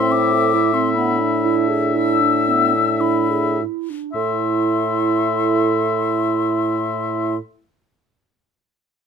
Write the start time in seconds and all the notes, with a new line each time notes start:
Already playing: A2 C4 E5 C6
0.12 E4 D6
0.33 A4
0.53 E4
0.73 C4 C6
0.93 B3 D4 B5
1.20 D4
1.45 E4
1.69 G#4
1.95 E4 E6
2.21 D4
2.48 B3
2.74 D4
3.00 E4 B5
3.30 G#4
3.61 E4
3.90 D4
4.13 A2 E4 A4 E5 C6